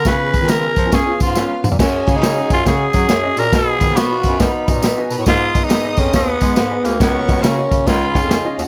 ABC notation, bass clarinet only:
X:1
M:4/4
L:1/16
Q:"Swing" 1/4=138
K:F#
V:1 name="Bass clarinet" clef=bass
C,3 D,3 E,2 C2 G,,3 z G,, A,, | F,,2 C,4 F,,2 C,2 F,2 F,,2 A,,2 | B,,2 D,2 B,2 F,,3 z F,, A,,2 z B,, =A,, | G,,2 z4 E,,2 D,,2 G,2 G,,2 =D,,2 |
C,,2 C,,2 C,2 C,2 C,,2 C,, E,,2 z D,, z |]